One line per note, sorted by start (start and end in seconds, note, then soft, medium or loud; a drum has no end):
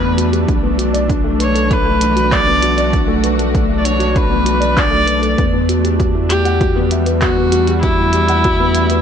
0.00 0.46 E2 medium
0.00 5.37 E3 medium
0.00 0.48 G3 medium
0.00 9.02 A3 medium
0.00 0.02 B3 loud
0.00 0.17 B3 medium
0.00 9.02 D4 medium
0.00 0.51 E4 medium
0.00 0.17 F#4 loud
0.00 0.32 G4 medium
0.00 0.29 B4 medium
0.00 0.51 B4 medium
0.00 0.50 E5 medium
0.00 0.51 F#5 loud
0.17 0.32 F#4 medium
0.17 closed hi-hat medium
0.32 0.47 G4 medium
0.32 closed hi-hat soft
0.47 5.35 B1 medium
0.47 0.62 D4 medium
0.47 kick loud
0.47 closed hi-hat soft
0.63 0.72 B3 medium
0.78 0.93 F#4 medium
0.78 closed hi-hat medium
0.93 1.03 D5 loud
0.93 closed hi-hat soft
1.08 1.23 D4 loud
1.08 kick loud
1.08 closed hi-hat soft
1.24 1.33 A3 loud
1.39 1.54 B4 medium
1.39 1.74 C#5 medium
1.39 closed hi-hat medium
1.55 1.70 A4 medium
1.55 closed hi-hat soft
1.70 1.84 A3 medium
1.70 2.34 B4 loud
1.70 kick loud
1.70 closed hi-hat soft
1.86 2.00 A3 medium
1.93 5.38 F#4 medium
2.01 2.16 D4 medium
2.01 closed hi-hat medium
2.16 2.31 F#4 medium
2.16 closed hi-hat soft
2.31 2.46 D4 medium
2.31 2.93 D5 loud
2.31 kick loud
2.31 clap medium
2.31 closed hi-hat soft
2.47 2.56 B3 medium
2.62 2.77 F#4 medium
2.62 closed hi-hat medium
2.77 2.87 D5 loud
2.77 closed hi-hat soft
2.92 3.07 D4 medium
2.92 kick loud
2.92 closed hi-hat soft
3.08 3.17 A3 loud
3.24 3.38 B4 medium
3.24 closed hi-hat medium
3.38 3.53 A4 medium
3.38 closed hi-hat soft
3.54 3.68 A3 medium
3.54 kick loud
3.54 closed hi-hat soft
3.69 3.84 A3 medium
3.78 3.86 D5 medium
3.84 3.99 D4 medium
3.84 4.08 C#5 medium
3.84 closed hi-hat medium
3.99 4.14 F#4 medium
3.99 closed hi-hat soft
4.08 4.18 C#5 medium
4.14 4.30 D4 medium
4.14 4.81 B4 loud
4.14 kick loud
4.14 closed hi-hat soft
4.30 4.39 B3 medium
4.45 4.60 F#4 medium
4.45 closed hi-hat medium
4.60 4.70 D5 loud
4.60 closed hi-hat soft
4.75 4.91 D4 medium
4.75 5.39 D5 loud
4.75 kick loud
4.75 clap medium
4.75 closed hi-hat soft
4.91 5.00 A3 loud
5.07 5.22 B4 medium
5.07 closed hi-hat medium
5.22 5.37 A4 medium
5.22 closed hi-hat soft
5.37 9.02 E2 loud
5.37 9.02 E3 medium
5.37 5.52 B3 medium
5.37 kick loud
5.37 closed hi-hat soft
5.53 5.68 B3 medium
5.69 5.83 F#4 medium
5.69 closed hi-hat medium
5.84 5.99 G4 medium
5.84 closed hi-hat soft
5.99 6.14 F#4 medium
5.99 kick medium
5.99 closed hi-hat soft
6.14 6.23 E4 medium
6.30 6.87 G4 loud
6.30 6.45 G4 medium
6.30 closed hi-hat medium
6.45 6.54 F#5 loud
6.45 closed hi-hat soft
6.60 9.02 G3 medium
6.60 6.75 F#4 loud
6.60 kick loud
6.60 closed hi-hat soft
6.76 6.85 B3 loud
6.91 7.06 E5 medium
6.91 closed hi-hat medium
7.06 7.21 B4 medium
7.06 closed hi-hat soft
7.21 7.36 B3 medium
7.21 7.79 F#4 loud
7.21 kick loud
7.21 clap medium
7.21 closed hi-hat soft
7.37 7.52 B3 medium
7.52 7.67 F#4 medium
7.52 closed hi-hat medium
7.67 7.83 G4 medium
7.67 closed hi-hat soft
7.82 9.02 E4 loud
7.82 7.98 F#4 medium
7.82 kick loud
7.82 closed hi-hat soft
7.98 8.07 E4 medium
8.13 8.28 G4 medium
8.13 closed hi-hat medium
8.29 8.38 F#5 loud
8.29 closed hi-hat soft
8.44 8.59 F#4 loud
8.44 kick loud
8.44 closed hi-hat soft
8.60 8.68 B3 loud
8.75 8.90 E5 medium
8.75 closed hi-hat medium
8.90 9.02 B4 medium
8.90 closed hi-hat soft